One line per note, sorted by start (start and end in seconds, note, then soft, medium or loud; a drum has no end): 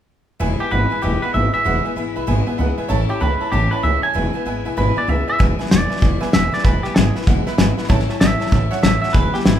0.39 0.58 E1 medium
0.39 0.59 E2 medium
0.39 0.60 B2 loud
0.39 0.60 E3 medium
0.39 0.59 G#3 loud
0.39 0.58 B3 medium
0.39 0.57 E4 loud
0.39 0.52 B4 loud
0.39 0.52 E5 loud
0.39 0.52 G#5 loud
0.59 0.70 E3 soft
0.59 0.70 G#3 soft
0.59 0.71 B3 medium
0.59 0.71 E4 medium
0.59 0.71 G4 medium
0.59 0.67 B4 medium
0.59 0.67 E5 medium
0.59 0.67 G#5 medium
0.59 muted upright bass stroke medium
0.71 0.89 G#1 medium
0.71 0.91 E3 medium
0.71 0.90 G#3 medium
0.71 0.90 B3 medium
0.71 0.89 E4 medium
0.71 0.83 B4 medium
0.71 1.02 B4 medium
0.71 0.83 E5 medium
0.71 0.83 F#5 medium
0.90 1.01 E3 soft
0.90 1.01 G#3 soft
0.90 1.02 B3 soft
0.90 1.02 E4 soft
0.90 0.98 B4 medium
0.90 0.98 E5 medium
0.90 0.98 G#5 medium
0.90 muted upright bass stroke medium
1.02 1.21 E1 medium
1.02 1.22 E2 medium
1.02 1.22 B2 medium
1.02 1.22 E3 medium
1.02 1.22 G#3 medium
1.02 1.22 B3 medium
1.02 1.21 E4 medium
1.02 1.21 G4 medium
1.02 1.14 B4 medium
1.02 1.15 E5 medium
1.02 1.15 G#5 loud
1.22 1.33 E3 soft
1.22 1.34 G#3 soft
1.22 1.34 B3 medium
1.22 1.34 E4 medium
1.22 1.33 B4 medium
1.22 1.29 B4 medium
1.22 1.29 E5 medium
1.22 1.30 F#5 medium
1.22 muted upright bass stroke medium
1.34 1.52 G#1 medium
1.34 1.53 E3 medium
1.34 1.54 G#3 medium
1.34 1.53 B3 medium
1.34 1.52 E4 medium
1.34 1.46 B4 medium
1.34 1.53 E5 medium
1.34 1.46 E5 medium
1.34 1.46 G#5 medium
1.53 1.65 E3 soft
1.53 1.65 G#3 soft
1.53 1.65 B3 soft
1.53 1.65 E4 medium
1.53 1.60 B4 medium
1.53 2.14 E5 loud
1.53 1.61 E5 medium
1.53 1.61 G#5 medium
1.53 muted upright bass stroke medium
1.64 1.83 E1 medium
1.64 1.84 E2 medium
1.64 1.85 B2 medium
1.64 1.85 E3 medium
1.64 1.85 G#3 medium
1.64 1.84 B3 medium
1.64 1.83 E4 medium
1.64 1.77 B4 medium
1.64 1.77 E5 medium
1.64 1.77 F#5 loud
1.84 1.95 E3 soft
1.84 1.96 G#3 soft
1.84 1.97 B3 medium
1.84 1.96 E4 medium
1.84 1.92 B4 medium
1.84 1.92 E5 medium
1.84 1.92 G#5 medium
1.84 muted upright bass stroke medium
1.96 2.14 G#1 medium
1.96 2.16 E3 medium
1.96 2.16 G#3 medium
1.96 2.15 B3 medium
1.96 2.14 E4 medium
1.96 2.08 B4 medium
1.96 2.08 E5 medium
1.96 2.08 G#5 loud
2.16 2.27 B1 medium
2.16 2.26 E3 medium
2.16 2.26 G#3 medium
2.16 2.27 B3 medium
2.16 2.27 E4 medium
2.16 2.23 B4 medium
2.16 2.23 E5 medium
2.16 2.23 B5 loud
2.27 2.45 G#1 medium
2.27 2.47 E2 medium
2.27 2.47 B2 medium
2.27 2.47 E3 medium
2.27 2.47 G#3 medium
2.27 2.47 B3 medium
2.27 2.46 E4 medium
2.27 2.39 B4 loud
2.27 2.39 E5 loud
2.27 2.39 G#5 loud
2.47 2.57 E3 soft
2.47 2.58 G#3 medium
2.47 2.59 B3 medium
2.47 2.58 E4 medium
2.47 2.54 B4 medium
2.47 2.54 E5 medium
2.47 2.54 G#5 loud
2.47 muted upright bass stroke medium
2.58 2.77 C#2 medium
2.58 2.78 E3 medium
2.58 2.78 G#3 medium
2.58 2.78 B3 medium
2.58 2.77 E4 medium
2.58 2.70 B4 medium
2.58 2.70 E5 medium
2.58 2.70 F#5 medium
2.78 2.88 E3 soft
2.78 2.90 G#3 medium
2.78 2.90 B3 medium
2.78 2.90 E4 medium
2.78 2.85 B4 medium
2.78 2.85 E5 medium
2.78 2.85 G#5 medium
2.78 muted upright bass stroke medium
2.88 3.08 A1 medium
2.88 3.09 A2 medium
2.88 3.09 E3 medium
2.88 3.10 A3 medium
2.88 3.09 C#4 medium
2.88 3.08 E4 medium
2.88 3.01 C#5 loud
2.88 3.01 E5 loud
2.88 3.01 A5 loud
3.09 3.20 A3 soft
3.09 3.21 C#4 soft
3.09 3.21 E4 medium
3.09 3.21 G4 medium
3.09 3.16 C#5 medium
3.09 3.16 E5 medium
3.09 3.16 B5 medium
3.09 muted upright bass stroke medium
3.20 3.39 C#2 medium
3.20 3.41 E3 medium
3.20 3.41 A3 medium
3.20 3.41 C#4 medium
3.20 3.39 E4 medium
3.20 3.51 B4 medium
3.20 3.32 C#5 medium
3.20 3.33 E5 medium
3.20 3.33 A5 medium
3.40 3.52 A3 soft
3.40 3.52 C#4 soft
3.40 3.52 E4 medium
3.40 3.48 C#5 medium
3.40 3.48 E5 medium
3.40 3.48 A5 medium
3.40 muted upright bass stroke medium
3.52 3.70 A1 medium
3.52 3.72 A2 medium
3.52 3.72 E3 medium
3.52 3.72 A3 medium
3.52 3.72 C#4 medium
3.52 3.71 E4 medium
3.52 3.71 G4 loud
3.52 3.64 C#5 medium
3.52 3.64 E5 medium
3.52 3.64 A5 loud
3.71 3.83 A3 soft
3.71 3.83 C#4 soft
3.71 3.84 E4 medium
3.71 3.83 B4 loud
3.71 3.79 C#5 medium
3.71 3.79 E5 medium
3.71 3.79 A5 medium
3.71 muted upright bass stroke medium
3.83 4.01 C#2 medium
3.83 4.03 E3 medium
3.83 4.03 A3 medium
3.83 4.03 C#4 medium
3.83 4.01 E4 medium
3.83 3.95 C#5 medium
3.83 4.03 E5 medium
3.83 3.96 E5 medium
3.83 3.96 G#5 medium
4.02 4.14 A3 soft
4.02 4.15 C#4 soft
4.02 4.14 E4 medium
4.02 4.10 C#5 medium
4.02 4.10 E5 medium
4.02 4.64 G#5 loud
4.02 4.11 A5 medium
4.02 muted upright bass stroke medium
4.14 4.33 E1 medium
4.14 4.34 E2 medium
4.14 4.34 B2 medium
4.14 4.34 E3 medium
4.14 4.34 G#3 medium
4.14 4.33 B3 medium
4.14 4.32 E4 medium
4.14 4.27 B4 loud
4.14 4.27 E5 medium
4.14 4.27 G#5 loud
4.33 4.44 E3 soft
4.33 4.45 G#3 soft
4.33 4.46 B3 medium
4.33 4.45 E4 medium
4.33 4.41 B4 medium
4.33 4.42 E5 medium
4.33 4.42 G#5 medium
4.33 muted upright bass stroke medium
4.46 4.64 G#1 medium
4.46 4.65 E3 medium
4.46 4.65 G#3 medium
4.46 4.65 B3 medium
4.46 4.64 E4 medium
4.46 4.58 B4 medium
4.46 4.58 E5 medium
4.46 4.58 G#5 loud
4.65 4.76 B1 medium
4.65 4.76 E3 medium
4.65 4.76 G#3 soft
4.65 4.77 B3 medium
4.65 4.77 E4 medium
4.65 4.72 B4 medium
4.65 4.73 E5 medium
4.65 4.73 G#5 medium
4.77 4.95 G#1 medium
4.77 4.97 E2 medium
4.77 4.97 B2 medium
4.77 4.97 E3 medium
4.77 4.96 G#3 medium
4.77 4.96 B3 medium
4.77 4.95 E4 medium
4.77 4.89 B4 medium
4.77 4.97 B4 loud
4.77 4.89 E5 medium
4.77 4.89 G#5 loud
4.96 5.06 E3 soft
4.96 5.07 G#3 soft
4.96 5.08 B3 soft
4.96 5.08 E4 medium
4.96 5.04 B4 medium
4.96 5.09 D5 medium
4.96 5.04 E5 medium
4.96 5.04 G#5 medium
4.96 muted upright bass stroke medium
5.07 5.26 C#2 medium
5.07 5.28 E3 medium
5.07 5.27 G#3 medium
5.07 5.27 B3 medium
5.07 5.26 E4 medium
5.07 5.20 B4 medium
5.07 5.20 E5 medium
5.07 5.28 E5 medium
5.07 5.20 G#5 medium
5.27 5.38 E3 soft
5.27 5.39 G#3 medium
5.27 5.39 B3 soft
5.27 5.39 E4 medium
5.27 5.35 B4 medium
5.27 5.35 E5 medium
5.27 5.40 E5 loud
5.27 5.35 G#5 medium
5.27 muted upright bass stroke medium
5.38 5.56 E1 medium
5.38 5.59 E2 medium
5.38 5.59 B2 medium
5.38 5.59 E3 medium
5.38 5.59 G#3 medium
5.38 5.58 B3 medium
5.38 5.58 E4 medium
5.38 5.51 B4 loud
5.38 5.51 E5 medium
5.38 5.51 G#5 loud
5.38 kick loud
5.38 snare soft
5.59 5.69 E3 soft
5.59 5.69 G#3 medium
5.59 5.70 B3 medium
5.59 5.71 E4 medium
5.59 5.66 B4 medium
5.59 5.66 E5 medium
5.59 5.66 G#5 loud
5.59 muted upright bass stroke medium
5.59 snare soft
5.66 snare soft
5.70 5.87 E1 medium
5.70 5.90 E3 medium
5.70 5.90 G#3 medium
5.70 5.89 B3 medium
5.70 5.88 E4 medium
5.70 5.82 B4 medium
5.70 6.32 D5 medium
5.70 5.83 E5 medium
5.70 5.83 G#5 medium
5.70 snare loud
5.70 hi-hat pedal medium
5.89 6.00 E3 soft
5.89 6.00 G#3 soft
5.89 6.01 B3 soft
5.89 6.01 E4 medium
5.89 5.97 B4 medium
5.89 5.97 E5 medium
5.89 5.97 G#5 medium
5.89 muted upright bass stroke medium
5.89 snare soft
5.97 6.21 E2 medium
5.97 snare soft
6.01 6.18 E1 medium
6.01 6.21 B2 medium
6.01 6.21 E3 medium
6.01 6.21 G#3 medium
6.01 6.19 B3 medium
6.01 6.19 E4 medium
6.01 6.13 B4 medium
6.01 6.14 E5 medium
6.01 6.14 G#5 medium
6.01 kick loud
6.01 snare soft
6.20 6.30 E3 soft
6.20 6.31 G#3 soft
6.20 6.32 B3 medium
6.20 6.32 E4 medium
6.20 6.28 B4 loud
6.20 6.28 E5 loud
6.20 6.28 G#5 loud
6.20 muted upright bass stroke medium
6.20 snare soft
6.31 6.50 E1 medium
6.31 6.52 E3 medium
6.31 6.52 G#3 medium
6.31 6.50 E4 medium
6.31 6.45 B4 loud
6.31 6.45 E5 medium
6.31 6.53 E5 medium
6.31 6.45 G#5 loud
6.31 snare loud
6.31 hi-hat pedal medium
6.51 6.63 E3 soft
6.51 6.64 G#3 soft
6.51 6.64 B3 soft
6.51 6.64 E4 soft
6.51 6.59 B4 medium
6.51 6.64 D5 medium
6.51 6.59 E5 medium
6.51 6.60 G#5 medium
6.51 muted upright bass stroke medium
6.51 snare soft
6.59 snare soft
6.64 6.81 E1 medium
6.64 6.84 E2 medium
6.64 6.84 B2 medium
6.64 6.84 E3 medium
6.64 6.84 G#3 medium
6.64 6.84 B3 medium
6.64 6.82 E4 medium
6.64 6.76 B4 medium
6.64 6.83 B4 medium
6.64 6.76 E5 medium
6.64 6.76 G#5 loud
6.64 kick loud
6.64 snare soft
6.83 6.94 E3 soft
6.83 6.95 G#3 soft
6.83 6.96 B3 medium
6.83 6.95 E4 medium
6.83 6.94 G4 medium
6.83 6.91 B4 medium
6.83 6.91 E5 medium
6.83 6.91 G#5 medium
6.83 muted upright bass stroke medium
6.83 snare soft
6.94 7.12 G#1 medium
6.94 7.15 E3 medium
6.94 7.16 G#3 medium
6.94 7.15 B3 medium
6.94 7.14 E4 medium
6.94 7.14 G#4 medium
6.94 7.07 B4 medium
6.94 7.07 E5 medium
6.94 7.08 G#5 medium
6.94 snare loud
6.94 hi-hat pedal medium
7.15 7.27 E3 soft
7.15 7.27 G#3 soft
7.15 7.27 B3 medium
7.15 7.27 E4 medium
7.15 7.22 B4 medium
7.15 7.22 E5 medium
7.15 7.23 B5 medium
7.15 muted upright bass stroke medium
7.15 snare soft
7.22 snare soft
7.27 7.43 E1 medium
7.27 7.46 E2 medium
7.27 7.47 B2 medium
7.27 7.47 E3 medium
7.27 7.47 G#3 medium
7.27 7.46 B3 medium
7.27 7.45 E4 medium
7.27 7.39 B4 medium
7.27 7.39 E5 medium
7.27 7.39 F#5 medium
7.27 kick loud
7.27 snare soft
7.46 7.57 E3 soft
7.46 7.58 G#3 soft
7.46 7.58 B3 medium
7.46 7.58 E4 medium
7.46 7.54 B4 loud
7.46 7.54 E5 loud
7.46 7.54 B5 loud
7.46 muted upright bass stroke medium
7.46 snare soft
7.58 7.74 G#1 medium
7.58 7.78 E3 medium
7.58 7.77 G#3 medium
7.58 7.77 B3 medium
7.58 7.76 E4 medium
7.58 7.70 B4 loud
7.58 7.70 E5 loud
7.58 7.70 G#5 loud
7.58 snare loud
7.58 hi-hat pedal medium
7.77 7.88 E3 soft
7.77 7.89 G#3 medium
7.77 7.89 B3 medium
7.77 7.89 E4 medium
7.77 7.85 B4 medium
7.77 7.85 E5 medium
7.77 7.85 B5 loud
7.77 muted upright bass stroke medium
7.77 snare soft
7.84 snare soft
7.88 8.06 A1 medium
7.88 8.09 A2 medium
7.88 8.09 E3 medium
7.88 8.09 A3 medium
7.88 8.08 C#4 medium
7.88 8.07 E4 loud
7.88 8.01 C#5 loud
7.88 8.01 E5 loud
7.88 8.01 A5 loud
7.88 kick loud
7.88 snare soft
8.00 snare soft
8.08 8.19 A3 medium
8.08 8.20 C#4 medium
8.08 8.20 E4 medium
8.08 8.16 C#5 medium
8.08 8.16 E5 medium
8.08 8.16 A5 medium
8.08 muted upright bass stroke medium
8.08 snare soft
8.19 8.37 A1 medium
8.19 8.40 E3 medium
8.19 8.40 A3 medium
8.19 8.40 C#4 medium
8.19 8.38 E4 medium
8.19 8.32 C#5 medium
8.19 8.32 E5 medium
8.19 8.81 E5 medium
8.19 8.33 A5 medium
8.19 snare loud
8.19 hi-hat pedal medium
8.39 8.51 A3 soft
8.39 8.51 C#4 soft
8.39 8.51 E4 medium
8.39 8.47 C#5 medium
8.39 8.47 E5 medium
8.39 8.47 A5 medium
8.39 muted upright bass stroke medium
8.39 snare soft
8.46 snare soft
8.51 8.68 A1 medium
8.51 8.71 A2 medium
8.51 8.71 E3 medium
8.51 8.72 A3 medium
8.51 8.71 C#4 medium
8.51 8.69 E4 medium
8.51 8.63 C#5 medium
8.51 8.63 E5 medium
8.51 8.63 A5 medium
8.51 kick loud
8.51 snare soft
8.71 8.81 A3 soft
8.71 8.82 C#4 medium
8.71 8.83 E4 medium
8.71 8.78 C#5 loud
8.71 8.78 E5 loud
8.71 8.78 F#5 loud
8.71 muted upright bass stroke medium
8.71 snare soft
8.82 8.99 A1 medium
8.82 9.02 E3 medium
8.82 9.02 C#4 medium
8.82 9.00 E4 medium
8.82 8.94 C#5 medium
8.82 8.95 E5 medium
8.82 9.00 E5 medium
8.82 8.95 A5 loud
8.82 snare loud
8.82 hi-hat pedal medium
9.01 9.14 A3 soft
9.01 9.14 C#4 medium
9.01 9.14 E4 medium
9.01 9.09 C#5 medium
9.01 9.13 E5 medium
9.01 9.09 E5 medium
9.01 9.10 F#5 medium
9.01 muted upright bass stroke medium
9.01 snare soft
9.09 9.33 E2 medium
9.09 snare soft
9.13 9.31 E1 medium
9.13 9.34 B2 medium
9.13 9.34 E3 medium
9.13 9.33 G#3 medium
9.13 9.32 B3 medium
9.13 9.32 E4 medium
9.13 9.33 B4 medium
9.13 9.26 B4 loud
9.13 9.26 E5 medium
9.13 9.26 G#5 loud
9.13 kick loud
9.13 snare soft
9.33 9.43 E3 soft
9.33 9.44 G#3 soft
9.33 9.45 B3 medium
9.33 9.45 E4 medium
9.33 9.46 G4 loud
9.33 9.41 B4 medium
9.33 9.41 E5 medium
9.33 9.41 G#5 medium
9.33 muted upright bass stroke medium
9.33 snare soft
9.40 snare soft
9.44 9.60 G#1 medium
9.44 9.60 E3 medium
9.44 9.60 G#3 medium
9.44 9.60 B3 medium
9.44 9.60 E4 loud
9.44 9.60 E4 medium
9.44 9.57 B4 medium
9.44 9.57 E5 medium
9.44 9.57 B5 medium
9.44 snare loud
9.44 hi-hat pedal medium